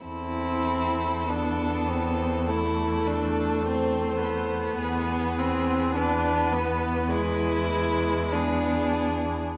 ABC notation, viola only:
X:1
M:4/4
L:1/8
Q:1/4=50
K:Am
V:1 name="Viola"
C2 B,2 A,4 | B, C D B, ^G, G, B,2 |]